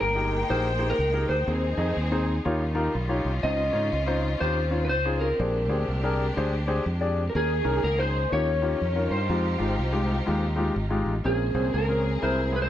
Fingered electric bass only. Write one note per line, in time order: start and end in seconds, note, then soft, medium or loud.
0.01 0.43 G1 medium
0.50 0.92 A#1 medium
0.99 1.24 C#2 medium
1.29 1.45 D2 medium
1.48 1.73 D#2 medium
1.78 1.94 F2 medium
1.97 2.38 D#2 medium
2.46 2.87 D#2 medium
2.95 3.20 B1 medium
3.25 3.41 C2 medium
3.44 3.69 C#2 loud
3.73 3.89 G#2 medium
3.93 4.34 C#2 medium
4.41 4.90 D#2 medium
4.90 5.31 C#2 medium
5.40 5.69 A#1 medium
5.69 5.85 D2 medium
5.88 6.30 C2 medium
6.37 6.79 D2 medium
6.86 7.27 F2 medium
7.35 7.60 D#2 loud
7.65 7.81 C2 medium
7.84 8.25 C#2 medium
8.32 8.74 D#2 medium
8.81 9.07 F2 medium
9.11 9.27 G2 medium
9.29 9.55 F2 loud
9.60 9.76 G#1 medium
9.79 10.20 C2 medium
10.28 10.69 D#2 medium
10.76 11.02 G#1 medium
11.06 11.22 A1 medium
11.25 11.51 A#1 medium
11.54 11.71 C2 medium
11.74 12.16 C#2 medium
12.23 12.69 C2 medium